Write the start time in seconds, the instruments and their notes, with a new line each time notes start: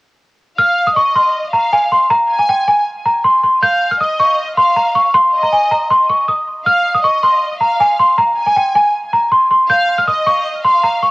0.59 violin section F5, celesta F6
0.87 celesta D#6
0.96 violin section D#5, celesta C#6
1.16 celesta C6
1.53 violin section F5, celesta A#5
1.73 celesta G#5
1.92 celesta C6
2.10 celesta A#5
2.30 violin section G#5
2.39 celesta G#5
2.49 celesta G5
2.68 celesta G#5
3.05 celesta A#5
3.24 celesta C6
3.43 celesta C6
3.62 violin section F5, celesta G6
3.91 celesta F6
4.00 violin section D#5, celesta D#6
4.20 celesta C#6
4.57 violin section F5, celesta C6
4.76 celesta A#5
4.95 celesta C#6
5.14 celesta C6
5.33 violin section D#5
5.43 celesta A#5
5.52 celesta G#5
5.71 celesta A#5
5.90 celesta C6
6.09 celesta C#6
6.28 celesta D#6
6.66 violin section F5, celesta F6
6.95 celesta D#6
7.04 violin section D#5, celesta C#6
7.23 celesta C6
7.61 violin section F5, celesta A#5
7.80 celesta G#5
7.99 celesta C6
8.18 celesta A#5
8.37 violin section G#5
8.46 celesta G#5
8.56 celesta G5
8.75 celesta G#5
9.13 celesta A#5
9.32 celesta C6
9.51 celesta C6
9.70 violin section F5, celesta G6
9.98 celesta F6
10.08 violin section D#5, celesta D#6
10.27 celesta C#6
10.65 violin section F5, celesta C6
10.84 celesta A#5
11.03 celesta C#6